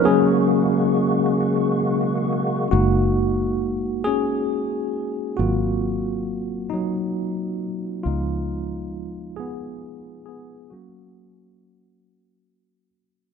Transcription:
<<
  \new Staff \with { instrumentName = "Tine electric piano" } { \time 6/8 \key fis \major \tempo 4. = 45 gis'2 r4 | fis'4. <cis' gis'>4. | fis'4. <fis dis'>4 r8 | <gis eis'>4. <b gis'>4 <b gis'>8 |
fis'2~ fis'8 r8 | }
  \new Staff \with { instrumentName = "Tine electric piano" } { \time 6/8 \key fis \major <fis ais cis'>8 r2 r8 | <gis ais dis'>2. | <fis ais bis eis'>4. r4. | <eis b dis'>8 r2 r8 |
<fis ais cis'>2. | }
  \new Staff \with { instrumentName = "Tonewheel organ" } { \time 6/8 \key fis \major <cis gis ais fis'>2. | r2. | r2. | r2. |
r2. | }
  \new Staff \with { instrumentName = "Fingered electric bass" } { \clef bass \time 6/8 \key fis \major r2. | fis,,2. | gis,,2. | cis,2. |
r2. | }
>>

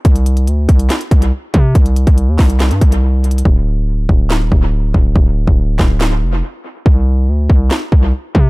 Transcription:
<<
  \new Staff \with { instrumentName = "808-style bass" } { \clef bass \time 4/4 \key c \dorian \tempo 4 = 141 c,4 d,8 c,8 r8 c,8 r8 c8 | c,8. c,8 ees,16 c,8. g,16 c,4. | d,,4. d,,8. ees,,16 d,,4 d,,8 | d,,8. d,,8. d,,4 f,,8 r4 |
c,4 d,8 c,8 r8 c,8 r8 c8 | }
  \new DrumStaff \with { instrumentName = "Drums" } \drummode { \time 4/4 <hh bd>16 hh16 hh16 hh16 hh8 <hh bd>16 hh16 <hc hh sn>16 hh16 <hh bd>16 hh16 r8 <hh bd>8 | <hh bd>16 hh16 hh16 <hh bd>16 hh8 <hc hho bd sn>16 hh16 <hc hh sn>16 hh16 <hh bd>16 hh16 \tuplet 3/2 { r16 r16 r16 hh16 hh16 hh16 } | bd4 r8 bd8 <hc sn>8 bd8 r8 bd8 | bd8. bd16 r8 <hc bd sn>8 <hc sn>4 r4 |
bd4 r8 bd8 <hc sn>8 bd8 r8 bd8 | }
>>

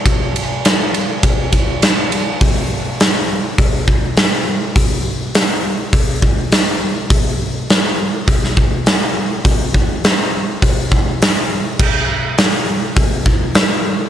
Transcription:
\new DrumStaff \with { instrumentName = "Drums" } \drummode { \time 4/4 \tempo 4 = 102 <bd cymr>8 cymr8 <cymr sn>8 cymr8 <bd cymr>8 <bd cymr>8 <cymr sn>8 cymr8 | <hho bd>4 <hho sn>4 <hho bd>8 bd8 <hho sn>4 | <hho bd>4 <hho sn>4 <hho bd>8 bd8 <hho sn>4 | <hho bd>4 <hho sn>4 <hho bd>16 sn16 bd8 <hho sn>4 |
<hho bd>8 bd8 <hho sn>4 <hho bd>8 bd8 <hho sn>4 | <cymc bd>4 <hho sn>4 <hho bd>8 bd8 <hho sn>4 | }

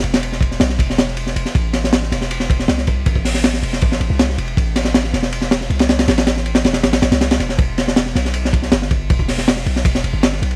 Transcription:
<<
  \new Staff \with { instrumentName = "808-style bass" } { \clef bass \time 4/4 \key a \minor \tempo 4 = 159 e,,4. b,,8 e,,4. e,,16 r16 | a,,4. e,,4. c,4 | a,,4. e,,8 a,,8 a,,16 c,8. e,,8 | a,,4. e,,4. c,4 |
a,,4. e,,8 a,,8 a,,16 c,8. e,,8 | e,,4. b,,4. g,,4 | e,,4. b,,8 e,,8 e,,16 g,,8. b,,8 | }
  \new DrumStaff \with { instrumentName = "Drums" } \drummode { \time 4/4 cymr16 <cymr sn>16 cymr16 sn16 <bd cymr>16 sn16 <cymr sn>16 sn16 <bd cymr>16 sn16 <cymr sn>16 sn16 cymr16 sn16 cymr16 sn16 | <bd cymr>8 <cymr sn>16 sn16 <cymr sn>16 sn16 <cymr sn>16 sn16 cymr16 sn16 <bd cymr>16 sn16 <cymr sn>16 sn16 <bd cymr>8 | <bd cymr>16 bd16 <hho sn>16 sn16 <cymr sn>16 sn16 cymr16 sn16 <bd cymr>16 sn16 cymr8 <cymr sn>16 sn16 cymr16 cymr16 | <bd cymr>8 <cymr sn>16 sn16 <cymr sn>16 sn16 <cymr sn>16 sn16 cymr16 sn16 <cymr sn>16 sn16 cymr16 <cymr sn>16 <cymr sn>16 <cymr sn>16 |
<cymr sn>16 <cymr sn>16 <cymr sn>16 sn16 cymr16 <cymr sn>16 <cymr sn>16 <cymr sn>16 <cymr sn>16 <cymr sn>16 <cymr sn>16 <cymr sn>16 <cymr sn>16 <cymr sn>16 <cymr sn>16 sn16 | <bd cymr>8 <cymr sn>16 sn16 <cymr sn>16 sn16 <cymr sn>16 sn16 cymr16 sn16 <bd cymr>16 sn16 <cymr sn>16 sn16 <bd cymr>8 | <bd cymr>16 bd16 <hho sn>16 sn16 <cymr sn>16 sn16 cymr16 sn16 <bd cymr>16 sn16 cymr8 <cymr sn>16 sn16 cymr16 cymr16 | }
>>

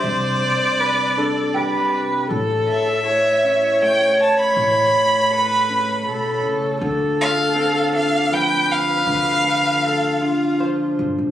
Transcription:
<<
  \new Staff \with { instrumentName = "Violin" } { \time 3/4 \key a \minor \tempo 4 = 80 d''2~ d''8 r8 | r8 e''4. g''8 a''16 b''16~ | b''2~ b''8 r8 | r8 f''4 f''8 g''8 f''8~ |
f''2 r4 | }
  \new Staff \with { instrumentName = "Clean electric guitar" } { \time 3/4 \key a \minor r2 g''16 b''8.~ | b''8. r8. e''4.~ | e''4 a'2~ | a'8 r8 c'2~ |
c'8 a'4. c''4 | }
  \new Staff \with { instrumentName = "Viola" } { \time 3/4 \key a \minor c''4 b'8 a'8 b'4 | a'4 cis''2~ | cis''4 b'4 a'4 | a'2 b'4~ |
b'4 a'8 f'4 r8 | }
  \new Staff \with { instrumentName = "Analog synth pad" } { \time 3/4 \key a \minor <c g d'>2. | <a e' cis''>2.~ | <a e' cis''>2. | <d f'>2.~ |
<d f'>2. | }
  \new Staff \with { instrumentName = "Steel-string acoustic guitar" } { \clef bass \time 3/4 \key a \minor << { r4. d'4. | r4. cis'4. | r4. cis'4. | r4. d'4. |
r4. d'4. | } \\ { c2 g4 | a,2 a4 | a,2 b,8 cis8 | d2 f4 |
d2 f4 | } >> }
  \new Staff \with { instrumentName = "Upright bass" } { \clef bass \time 3/4 \key a \minor c,8 r2 r8 | a,,8 r2 r8 | a,,8 r2 r8 | d,8 r2 r8 |
d,8 r2 g,,16 a,,16 | }
>>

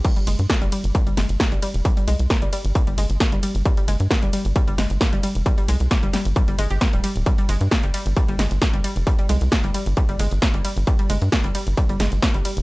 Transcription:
<<
  \new Staff \with { instrumentName = "Synth arpeggio sound" } { \clef bass \time 4/4 \key g \phrygian \tempo 4 = 133 g16 g16 aes16 r16 bes16 g16 g16 r16 g16 g16 aes16 r16 bes16 g16 g16 r16 | g16 g16 aes16 r16 bes16 g16 g16 r16 g16 g16 aes16 r16 bes16 g16 g16 r16 | g16 g16 aes16 r16 bes16 g16 g16 r16 g16 g16 aes16 r16 bes16 g16 g16 r16 | g16 g16 aes16 r16 bes16 g16 g16 r16 g16 g16 aes16 g'16 bes16 g16 g16 r16 |
g16 g16 aes16 r16 bes16 g16 g16 r16 g16 g16 aes16 r16 bes16 g16 g16 r16 | g16 g16 aes16 r16 bes16 g16 g16 r16 g16 g16 aes16 r16 bes16 g16 g16 r16 | g16 g16 aes16 r16 bes16 g16 g16 r16 g16 g16 aes16 r16 bes16 g16 g16 r16 | }
  \new Staff \with { instrumentName = "Analog synth bass" } { \clef bass \time 4/4 \key g \phrygian r8 g,,16 g,16 r16 g,,16 r16 g,,16 r16 g,,16 g,,16 g,,16 r16 g,,16 r16 f,,16 | r8 c,16 c,16 r16 g,,16 r16 g,,16 r16 g,,16 g,,16 g,,16 r16 g,,16 r16 g,,16 | r8 g,,16 g,16 r16 g,,16 r16 g,,16 r16 g,,16 g,,16 g,,16 r16 g,,16 r16 f,,16 | r8 c,16 c,16 r16 g,,16 r16 g,,16 r16 g,,16 g,,16 g,,16 r16 d,,16 r16 d,,16 |
r8 g,,16 g,16 r16 g,,16 r16 g,,16 r16 g,,16 g,,16 g,,16 r16 g,,16 r16 f,,16 | r8 c,16 c,16 r16 g,,16 r16 g,,16 r16 g,,16 g,,16 g,,16 r16 g,,16 r16 g,,16 | r8 g,,16 g,16 r16 g,,16 r16 g,,16 r16 g,,16 g,,16 g,,16 r16 g,,16 r16 f,,16 | }
  \new DrumStaff \with { instrumentName = "Drums" } \drummode { \time 4/4 <cymc hh bd>16 hh16 <hho cymr>16 hh16 <hh bd sn>16 hh16 <hho cymr>16 hh16 <hh bd>16 hh16 <hho cymr sn>16 hh16 <hh bd sn>16 hh16 <hho cymr>16 hh16 | <hh bd>16 hh16 <hho cymr>16 hh16 <hh bd sn>16 hh16 <hho cymr>16 hh16 <hh bd>16 hh16 <hho cymr>16 hh16 <hh bd sn>16 hh16 <hho cymr>16 hh16 | <hh bd>16 hh16 <hho cymr>16 hh16 <hh bd sn>16 hh16 <hho cymr>16 hh16 <hh bd>16 hh16 <hho cymr sn>16 hh16 <hh bd sn>16 hh16 <hho cymr>16 hh16 | <hh bd>16 hh16 <hho cymr>16 hh16 <hh bd sn>16 hh16 <hho cymr sn>16 hh16 <hh bd>16 hh16 <hho cymr>16 hh16 <hh bd sn>16 hh16 <hho cymr>16 hh16 |
<hh bd>16 hh16 <hho cymr>16 hh16 <hh bd sn>16 hh16 <hho cymr>16 hh16 <hh bd>16 hh16 <hho cymr sn>16 hh16 <hh bd sn>16 hh16 <hho cymr>16 hh16 | <hh bd>16 hh16 <hho cymr>16 hh16 <hh bd sn>16 hh16 <hho cymr>16 hh16 <hh bd>16 hh16 <hho cymr>16 hh16 <hh bd sn>16 hh16 <hho cymr>16 hh16 | <hh bd>16 hh16 <hho cymr>16 hh16 <hh bd sn>16 hh16 <hho cymr>16 hh16 <hh bd>16 hh16 <hho cymr sn>16 hh16 <hh bd sn>16 hh16 <hho cymr>16 hh16 | }
>>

